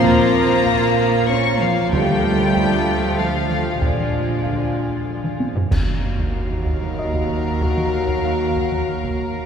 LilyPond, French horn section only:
\new Staff \with { instrumentName = "French horn section" } { \time 3/4 \key bes \major \tempo 4 = 95 bes'2 des''8 f'8 | g'2 f'4 | d'2~ d'8 r8 | \key ees \minor <ges ges'>2.~ |
<ges ges'>2. | }